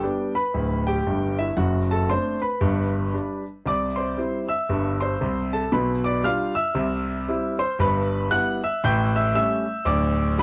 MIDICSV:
0, 0, Header, 1, 2, 480
1, 0, Start_track
1, 0, Key_signature, 1, "major"
1, 0, Tempo, 518135
1, 1463, Time_signature, 4, 2, 24, 8
1, 9659, End_track
2, 0, Start_track
2, 0, Title_t, "Grand piano"
2, 0, Program_c, 0, 0
2, 0, Control_c, 0, 64, 127
2, 0, Note_on_c, 0, 67, 48
2, 0, Note_on_c, 0, 79, 64
2, 31, Control_c, 0, 64, 0
2, 33, Note_on_c, 0, 55, 44
2, 33, Note_on_c, 0, 62, 43
2, 34, Note_on_c, 0, 59, 42
2, 288, Note_off_c, 0, 67, 0
2, 294, Note_off_c, 0, 55, 0
2, 294, Note_off_c, 0, 62, 0
2, 295, Note_off_c, 0, 59, 0
2, 312, Note_off_c, 0, 79, 0
2, 326, Note_on_c, 0, 83, 90
2, 338, Note_on_c, 0, 71, 61
2, 501, Note_on_c, 0, 38, 62
2, 504, Note_on_c, 0, 26, 66
2, 770, Note_off_c, 0, 71, 0
2, 796, Note_off_c, 0, 83, 0
2, 804, Note_on_c, 0, 79, 84
2, 817, Note_on_c, 0, 67, 66
2, 910, Note_off_c, 0, 38, 0
2, 912, Note_off_c, 0, 26, 0
2, 987, Note_on_c, 0, 31, 61
2, 988, Note_on_c, 0, 43, 59
2, 1250, Note_off_c, 0, 67, 0
2, 1276, Note_off_c, 0, 79, 0
2, 1284, Note_on_c, 0, 76, 81
2, 1296, Note_on_c, 0, 64, 56
2, 1369, Note_off_c, 0, 31, 0
2, 1370, Note_off_c, 0, 43, 0
2, 1451, Note_on_c, 0, 42, 64
2, 1452, Note_on_c, 0, 78, 69
2, 1455, Note_on_c, 0, 30, 63
2, 1465, Note_off_c, 0, 64, 0
2, 1471, Note_on_c, 0, 66, 57
2, 1472, Note_off_c, 0, 76, 0
2, 1665, Control_c, 0, 64, 127
2, 1731, Note_off_c, 0, 66, 0
2, 1742, Note_off_c, 0, 78, 0
2, 1770, Note_on_c, 0, 81, 78
2, 1780, Note_on_c, 0, 69, 67
2, 1865, Note_off_c, 0, 42, 0
2, 1867, Note_off_c, 0, 30, 0
2, 1939, Note_on_c, 0, 57, 43
2, 1940, Note_on_c, 0, 62, 45
2, 1941, Note_on_c, 0, 84, 86
2, 1945, Note_on_c, 0, 60, 38
2, 1947, Note_off_c, 0, 69, 0
2, 1955, Note_off_c, 0, 81, 0
2, 1955, Control_c, 0, 64, 0
2, 1955, Note_on_c, 0, 72, 68
2, 2204, Note_off_c, 0, 57, 0
2, 2205, Note_off_c, 0, 62, 0
2, 2209, Note_off_c, 0, 60, 0
2, 2214, Note_off_c, 0, 72, 0
2, 2227, Note_off_c, 0, 84, 0
2, 2239, Note_on_c, 0, 83, 73
2, 2242, Note_on_c, 0, 71, 61
2, 2417, Note_on_c, 0, 43, 79
2, 2421, Note_on_c, 0, 31, 64
2, 2594, Control_c, 0, 64, 127
2, 2828, Note_off_c, 0, 43, 0
2, 2831, Note_off_c, 0, 31, 0
2, 2906, Note_on_c, 0, 55, 39
2, 2911, Note_on_c, 0, 62, 44
2, 2912, Control_c, 0, 64, 0
2, 3159, Note_off_c, 0, 71, 0
2, 3169, Note_off_c, 0, 55, 0
2, 3173, Note_off_c, 0, 62, 0
2, 3194, Note_off_c, 0, 83, 0
2, 3386, Note_on_c, 0, 36, 59
2, 3388, Note_on_c, 0, 48, 68
2, 3402, Note_on_c, 0, 86, 97
2, 3409, Note_on_c, 0, 74, 67
2, 3590, Control_c, 0, 64, 127
2, 3662, Note_off_c, 0, 74, 0
2, 3668, Note_on_c, 0, 84, 70
2, 3677, Note_off_c, 0, 86, 0
2, 3681, Note_on_c, 0, 72, 51
2, 3794, Note_off_c, 0, 36, 0
2, 3795, Note_off_c, 0, 48, 0
2, 3866, Note_on_c, 0, 55, 45
2, 3874, Note_on_c, 0, 60, 49
2, 3877, Control_c, 0, 64, 0
2, 3877, Note_on_c, 0, 64, 45
2, 4122, Note_off_c, 0, 72, 0
2, 4130, Note_off_c, 0, 55, 0
2, 4136, Note_off_c, 0, 60, 0
2, 4138, Note_off_c, 0, 64, 0
2, 4148, Note_off_c, 0, 84, 0
2, 4156, Note_on_c, 0, 88, 82
2, 4165, Note_on_c, 0, 76, 65
2, 4348, Note_on_c, 0, 31, 69
2, 4350, Note_on_c, 0, 43, 70
2, 4604, Note_off_c, 0, 76, 0
2, 4633, Note_off_c, 0, 88, 0
2, 4638, Note_on_c, 0, 84, 78
2, 4653, Note_on_c, 0, 72, 63
2, 4755, Note_off_c, 0, 31, 0
2, 4756, Note_off_c, 0, 43, 0
2, 4825, Note_on_c, 0, 48, 68
2, 4830, Note_on_c, 0, 36, 70
2, 5088, Note_off_c, 0, 72, 0
2, 5114, Note_off_c, 0, 84, 0
2, 5124, Note_on_c, 0, 81, 80
2, 5130, Note_on_c, 0, 69, 58
2, 5209, Note_off_c, 0, 48, 0
2, 5212, Note_off_c, 0, 36, 0
2, 5299, Note_on_c, 0, 47, 71
2, 5302, Note_on_c, 0, 83, 77
2, 5303, Note_off_c, 0, 69, 0
2, 5303, Note_on_c, 0, 35, 62
2, 5313, Note_off_c, 0, 81, 0
2, 5324, Note_on_c, 0, 71, 52
2, 5491, Control_c, 0, 64, 127
2, 5580, Note_off_c, 0, 71, 0
2, 5588, Note_off_c, 0, 83, 0
2, 5598, Note_on_c, 0, 86, 84
2, 5611, Note_on_c, 0, 74, 69
2, 5710, Note_off_c, 0, 47, 0
2, 5712, Note_off_c, 0, 35, 0
2, 5777, Note_on_c, 0, 55, 53
2, 5778, Note_on_c, 0, 65, 58
2, 5783, Note_on_c, 0, 89, 96
2, 5784, Note_off_c, 0, 74, 0
2, 5784, Note_on_c, 0, 62, 48
2, 5790, Note_off_c, 0, 86, 0
2, 5793, Note_on_c, 0, 77, 80
2, 5799, Control_c, 0, 64, 0
2, 6043, Note_off_c, 0, 55, 0
2, 6044, Note_off_c, 0, 65, 0
2, 6049, Note_off_c, 0, 62, 0
2, 6054, Note_off_c, 0, 77, 0
2, 6068, Note_off_c, 0, 89, 0
2, 6069, Note_on_c, 0, 88, 97
2, 6081, Note_on_c, 0, 76, 69
2, 6250, Note_on_c, 0, 36, 71
2, 6252, Note_on_c, 0, 48, 83
2, 6432, Control_c, 0, 64, 127
2, 6665, Note_off_c, 0, 36, 0
2, 6666, Note_off_c, 0, 48, 0
2, 6748, Note_on_c, 0, 60, 44
2, 6749, Note_on_c, 0, 55, 45
2, 6754, Control_c, 0, 64, 0
2, 6755, Note_on_c, 0, 64, 57
2, 6998, Note_off_c, 0, 76, 0
2, 7011, Note_off_c, 0, 60, 0
2, 7012, Note_off_c, 0, 55, 0
2, 7017, Note_off_c, 0, 64, 0
2, 7029, Note_off_c, 0, 88, 0
2, 7031, Note_on_c, 0, 72, 67
2, 7034, Note_on_c, 0, 84, 87
2, 7213, Note_off_c, 0, 72, 0
2, 7217, Note_on_c, 0, 31, 69
2, 7223, Note_on_c, 0, 43, 76
2, 7228, Note_off_c, 0, 84, 0
2, 7228, Note_on_c, 0, 83, 93
2, 7238, Note_on_c, 0, 71, 77
2, 7379, Control_c, 0, 64, 127
2, 7629, Note_off_c, 0, 31, 0
2, 7632, Note_off_c, 0, 43, 0
2, 7678, Note_off_c, 0, 71, 0
2, 7692, Note_on_c, 0, 55, 49
2, 7696, Note_on_c, 0, 59, 50
2, 7698, Note_on_c, 0, 64, 47
2, 7698, Note_on_c, 0, 90, 115
2, 7707, Note_off_c, 0, 83, 0
2, 7707, Note_on_c, 0, 78, 78
2, 7719, Control_c, 0, 64, 0
2, 7959, Note_off_c, 0, 55, 0
2, 7963, Note_off_c, 0, 59, 0
2, 7964, Note_off_c, 0, 64, 0
2, 7970, Note_off_c, 0, 78, 0
2, 7985, Note_off_c, 0, 90, 0
2, 8000, Note_on_c, 0, 88, 86
2, 8003, Note_on_c, 0, 76, 68
2, 8179, Note_off_c, 0, 76, 0
2, 8187, Note_on_c, 0, 45, 86
2, 8189, Note_on_c, 0, 33, 80
2, 8191, Note_off_c, 0, 88, 0
2, 8195, Note_on_c, 0, 91, 104
2, 8206, Note_on_c, 0, 79, 84
2, 8367, Control_c, 0, 64, 127
2, 8460, Note_off_c, 0, 79, 0
2, 8474, Note_off_c, 0, 91, 0
2, 8484, Note_on_c, 0, 88, 94
2, 8488, Note_on_c, 0, 76, 77
2, 8594, Note_off_c, 0, 45, 0
2, 8595, Note_off_c, 0, 33, 0
2, 8652, Note_off_c, 0, 88, 0
2, 8659, Note_on_c, 0, 55, 49
2, 8660, Note_off_c, 0, 76, 0
2, 8664, Note_on_c, 0, 57, 47
2, 8666, Note_on_c, 0, 88, 104
2, 8667, Note_on_c, 0, 61, 51
2, 8673, Control_c, 0, 64, 0
2, 8674, Note_on_c, 0, 76, 79
2, 8925, Note_off_c, 0, 55, 0
2, 8928, Note_off_c, 0, 57, 0
2, 8930, Note_off_c, 0, 61, 0
2, 9116, Note_off_c, 0, 76, 0
2, 9126, Note_on_c, 0, 38, 85
2, 9132, Note_on_c, 0, 26, 66
2, 9134, Note_on_c, 0, 86, 101
2, 9145, Note_off_c, 0, 88, 0
2, 9147, Note_on_c, 0, 74, 69
2, 9342, Control_c, 0, 64, 127
2, 9542, Note_off_c, 0, 38, 0
2, 9545, Note_off_c, 0, 26, 0
2, 9592, Note_off_c, 0, 74, 0
2, 9619, Note_off_c, 0, 86, 0
2, 9619, Note_on_c, 0, 54, 54
2, 9627, Note_on_c, 0, 83, 106
2, 9630, Note_on_c, 0, 57, 51
2, 9632, Control_c, 0, 64, 0
2, 9659, Note_off_c, 0, 54, 0
2, 9659, Note_off_c, 0, 57, 0
2, 9659, Note_off_c, 0, 83, 0
2, 9659, End_track
0, 0, End_of_file